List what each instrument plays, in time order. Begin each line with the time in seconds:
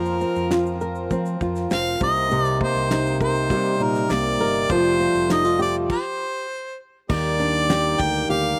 Already playing: fingered electric bass F2, harmonium F3 C4 A#4, nylon-string guitar F3 A#3 D4 A#4, harmonica A#4
0.05 shaker
0.21 nylon-string guitar C4, shaker
0.36 fingered electric bass F2, shaker
0.51 nylon-string guitar F4, snare, clap, shaker
0.66 shaker
0.81 nylon-string guitar A#4, shaker
0.95 shaker
1.11 fingered electric bass F3, nylon-string guitar C4, kick, shaker
1.26 shaker
1.41 fingered electric bass F2, nylon-string guitar F4, kick, shaker
1.56 snare, shaker
1.70 fingered electric bass F1, nylon-string guitar C4, harmonica F5, snare, clap, shaker
1.86 shaker
2.01 fingered electric bass C2, nylon-string guitar C3, harmonium C3 A#3 D#4, harmonica D#5, kick, shaker
2.15 shaker
2.31 nylon-string guitar C3, shaker
2.42 harmonica D5, shaker
2.60 nylon-string guitar A#3, harmonica C5, kick
2.75 fingered electric bass C2, shaker
2.91 nylon-string guitar D#4, snare, clap, shaker
3.07 shaker
3.21 nylon-string guitar A#4, harmonica C5, kick, shaker
3.35 shaker
3.50 fingered electric bass C3, nylon-string guitar G3, kick, shaker
3.65 shaker
3.80 fingered electric bass A#2, nylon-string guitar D#4, harmonica A#4, shaker
3.95 snare, shaker
4.09 fingered electric bass C2, nylon-string guitar A#3, harmonica D5, snare, clap, shaker
4.25 shaker
4.40 fingered electric bass G1, nylon-string guitar A#4, shaker
4.54 shaker
4.69 fingered electric bass F1, nylon-string guitar F3, harmonium G3 A3 F4, harmonica C5, kick, shaker
4.84 shaker
4.99 nylon-string guitar C4, shaker
5.15 fingered electric bass F1, shaker
5.30 nylon-string guitar D#4, harmonica D#5, snare, clap, shaker
5.45 nylon-string guitar F4, shaker
5.59 nylon-string guitar G4, harmonica D5, shaker
5.75 shaker
5.90 harmonica C5, kick, crash
7.09 fingered electric bass D#2, nylon-string guitar D#3, harmonium G3 A#3 G4, harmonica D5, kick, crash
7.40 nylon-string guitar D4, shaker
7.55 shaker
7.70 nylon-string guitar G4, snare, clap, shaker
7.99 fingered electric bass D2, harmonica G5, kick, shaker
8.14 shaker
8.29 fingered electric bass D2, nylon-string guitar G4, harmonica F5, shaker